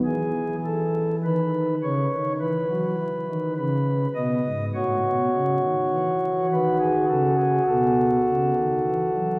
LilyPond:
<<
  \new Staff \with { instrumentName = "Pipe organ" } { \time 4/4 \key cis \minor \tempo 4 = 51 << { gis'8 a'8 b'8 cis''8 b'4 b'8 dis''8 | cis''4. b'16 gis'16 a'16 gis'16 a'4. | } \\ { r1 | fis'1 | } >> }
  \new Staff \with { instrumentName = "Pipe organ" } { \clef bass \time 4/4 \key cis \minor e4 dis8 cis16 dis16 e16 fis16 e16 dis16 cis8 b,16 gis,16 | a,16 b,16 cis16 dis16 e8 dis8 cis8 b,8 cis16 dis16 e16 fis16 | }
>>